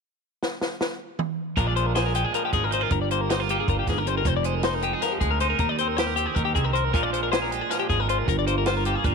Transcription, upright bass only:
1.57 A#1
2.53 G#1
2.91 G1
3.68 G1
3.87 G1
4.25 F1
5.21 D2
5.60 D#2
6.36 D#2
6.55 C2
6.94 A#1
7.90 G#1
8.28 G1
9.04 G1

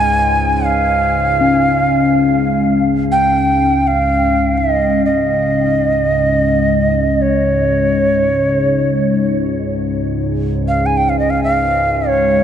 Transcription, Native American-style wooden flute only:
Already playing: G#5
0.66 F5
3.12 G5
3.87 F5
4.57 D#5
5.05 D#5
7.22 C#5
10.68 F5
10.86 G#5
10.97 G5
11.09 F5
11.19 D#5
11.30 F5
11.44 F5
12.08 C#5

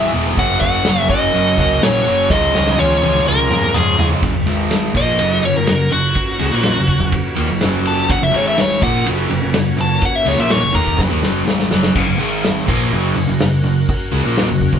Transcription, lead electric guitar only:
Already playing: E5
0.39 F#5
0.61 F#5
1.10 D#5
1.83 C#5
2.31 D#5
2.79 C#5
3.28 A#4
3.74 G#4
4.97 D#5
5.45 C#5
5.57 A#4
5.92 F#4
7.88 A5
8.12 F#5
8.23 E5
8.36 C#5
8.47 E5
8.60 C#5
8.83 F#5
9.81 A5
10.05 F#5
10.16 E5
10.28 C#5
10.40 E5
10.51 C#5
10.75 A#5

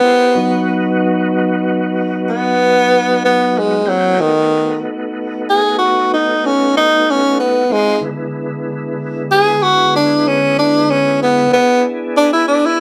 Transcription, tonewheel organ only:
0.02 E4 G4 A#4 C5
0.35 F#3 B3 D#4 F#4
3.85 A#3 C4 E4 G5
4.16 A3 B3 D#4 F#4
7.69 G#3 C4 D#4 F4
8.01 D3 G#3 B3 E4
11.49 B3 D4 E4 G#4

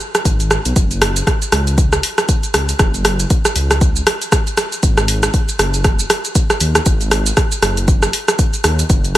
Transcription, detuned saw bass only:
0.25 G#1
0.66 B1
0.76 F#1
1.52 C#2
2.54 C#2
2.80 F#1
3.56 C#2
4.83 G#1
5.59 F#1
6.61 D#2
6.86 G#1
7.62 F#1
8.64 D#2
8.90 F#1

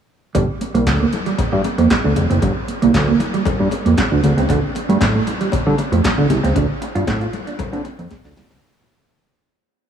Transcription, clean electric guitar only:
0.35 G3
0.61 muted clean electric guitar stroke
0.74 A#3
1.00 A#3
1.13 muted clean electric guitar stroke
1.26 G3
1.52 G3
1.65 muted clean electric guitar stroke
1.78 A#3
2.04 D4
2.16 muted clean electric guitar stroke
2.30 C4
2.42 G3
2.68 muted clean electric guitar stroke
2.82 A#3
3.08 A#3
3.20 muted clean electric guitar stroke
3.34 G3
3.59 G3
3.72 muted clean electric guitar stroke
3.85 A#3
4.11 D4
4.24 muted clean electric guitar stroke
4.37 C4
4.49 D4
4.76 muted clean electric guitar stroke
4.89 A3
5.15 A3
5.27 muted clean electric guitar stroke
5.41 G3
5.66 G3
5.79 muted clean electric guitar stroke
5.92 A3
6.18 D4
6.30 muted clean electric guitar stroke
6.43 C4
6.56 D4
6.82 muted clean electric guitar stroke
6.95 F4
7.21 F4
7.33 muted clean electric guitar stroke
7.47 D4
7.73 C4
7.85 muted clean electric guitar stroke
7.99 C4
8.24 D4
8.37 muted clean electric guitar stroke
8.51 C4

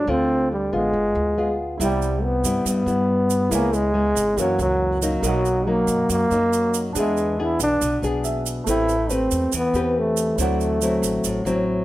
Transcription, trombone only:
Already playing: D4
0.10 C4
0.52 G3
0.74 G#3
1.82 G3
2.24 B3
2.68 B3
3.53 A#3
3.75 G#3
4.40 F#3
4.62 F#3
5.26 F#3
5.69 A#3
6.12 A#3
6.98 G#3
7.42 E4
7.63 D4
8.69 E4
9.12 C4
9.56 B3
9.98 A3
10.41 A3

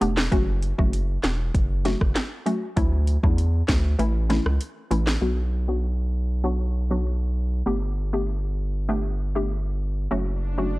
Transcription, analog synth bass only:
0.02 E1
0.32 F#1
0.79 F#1
1.24 E1
1.54 F#1
2.01 F#1
2.77 D2
3.23 E2
3.69 D2
3.99 A1
4.46 C#2
4.91 A1
5.21 B1
7.67 G1
10.12 F#1

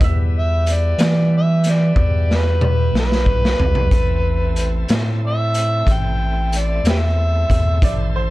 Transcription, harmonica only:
0.39 E5
0.74 D5
1.37 E5
1.70 D5
2.36 B4
2.99 B4
5.27 E5
5.93 G5
6.59 D5
6.89 G4 B4 E5

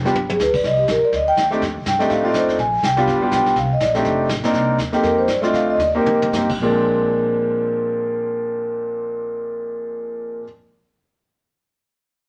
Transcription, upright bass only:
Already playing: F1
0.14 G1
0.39 D2
0.64 C2
0.88 A#1
1.02 muted upright bass stroke
1.13 D2
1.37 D#2
1.61 F2
1.69 D#2
1.78 C2
1.86 G2
2.10 A2
2.34 F2
2.58 A#1
2.83 C2
3.07 G1
3.31 B1
3.56 C2
3.80 A#1
4.04 F1
4.29 A1
4.38 F1
4.46 D#1
4.53 C2
4.78 D#2
5.03 F2
5.28 G2
5.53 D2
5.78 D#2
6.04 F2
6.32 G2
6.60 A#1

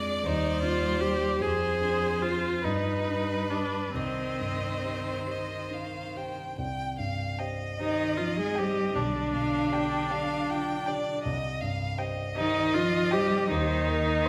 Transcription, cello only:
Already playing: G#3
0.27 G3
1.42 F3
2.64 G3
3.96 D#3
7.80 D#3
8.19 F3
8.39 G#3
8.59 G3
8.96 D3
12.36 D#3
12.75 F3
13.13 G3
13.52 D#3

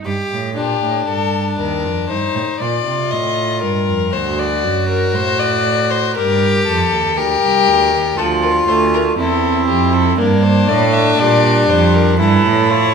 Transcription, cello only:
0.06 G2
0.31 A2
0.57 A#2
0.82 A2
1.08 G2
1.59 D#2
1.85 F2
2.10 G2
2.35 A2
2.61 A#2
2.86 C3
3.12 A2
3.62 G2
3.88 F2
4.13 D2
4.64 F#2
5.15 A2
6.16 G2
6.67 F2
6.92 D#2
7.17 D2
7.42 C2
7.67 D2
7.92 D#2
8.18 D2
8.68 D2
9.18 E2
9.69 F2
10.19 G2
10.69 A2
11.19 A#2
11.70 F2
12.20 G2
12.45 A2

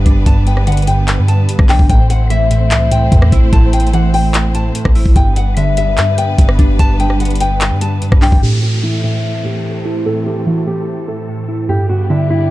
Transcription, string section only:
Already playing: G3 B3 D4 B4
1.90 A3 C4 E4 C5
5.16 G3 B3 D4 B4
8.42 E3 A3 C4 A4
11.69 D3 G3 B3 G4

